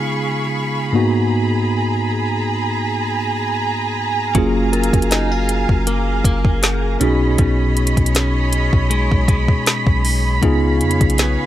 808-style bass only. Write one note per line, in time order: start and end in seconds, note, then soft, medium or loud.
4.35 4.91 F#1 loud
4.93 5.66 F#1 loud
5.69 6.22 F#1 loud
6.24 6.98 F#1 loud
7.01 7.37 B1 loud
7.39 7.95 B1 loud
7.97 8.70 B1 loud
8.73 9.10 B1 medium
9.12 9.48 B1 loud
9.87 10.40 B1 loud
10.43 10.82 C#2 loud
10.81 11.00 F2 medium
11.01 11.37 B1 loud